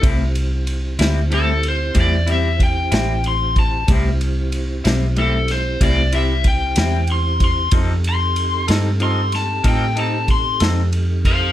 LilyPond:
<<
  \new Staff \with { instrumentName = "Electric slide guitar" } { \time 12/8 \key a \minor \tempo 4. = 62 r2 a'8 c''8 d''8 e''8 g''4 c'''8 a''8 | r2 a'8 c''8 d''8 e''8 g''4 c'''8 c'''8 | r8 c'''4 r8 c'''8 a''8 g''8 a''8 c'''8 r4 <c'' f''>8 | }
  \new Staff \with { instrumentName = "Tonewheel organ" } { \time 12/8 \key a \minor <c' e' g' c''>1. | <c' e' g' c''>1. | <c' ees' g' a'>1. | }
  \new Staff \with { instrumentName = "Clean electric guitar" } { \time 12/8 \key a \minor <a, g c' e'>8 r4 <g c' e'>8 <a, g c' e'>8 r8 <a, g c' e'>8 <g c' e'>8 r8 <g c' e'>8 r4 | <a, g c' e'>8 r4 <g c' e'>8 <a, g c' e'>8 r8 <a, g c' e'>8 <g c' e'>8 r8 <g c' e'>8 r4 | <f c' ees' a'>8 r4 <c' ees' a'>8 <f c' ees' a'>8 r8 <f c' ees' a'>8 <c' ees' a'>8 r8 <c' ees' a'>8 r4 | }
  \new Staff \with { instrumentName = "Fingered electric bass" } { \clef bass \time 12/8 \key a \minor c,4. d,4. e,4. a,,4. | c,4. b,,4. c,4. e,4. | f,4. g,4. a,4. f,4. | }
  \new DrumStaff \with { instrumentName = "Drums" } \drummode { \time 12/8 <bd cymr>8 cymr8 cymr8 <cymr sn>8 cymr8 cymr8 <bd cymr>8 cymr8 <bd cymr>8 <cymr sn>8 cymr8 <bd cymr>8 | <bd cymr>8 cymr8 cymr8 <cymr sn>8 cymr8 <cymr sn>8 <bd cymr>8 cymr8 <bd cymr>8 <cymr sn>8 cymr8 <bd cymr>8 | <bd cymr>8 cymr8 cymr8 <cymr sn>8 cymr8 <cymr sn>8 <bd cymr>8 cymr8 <bd cymr>8 <cymr sn>8 cymr8 <bd cymr>8 | }
>>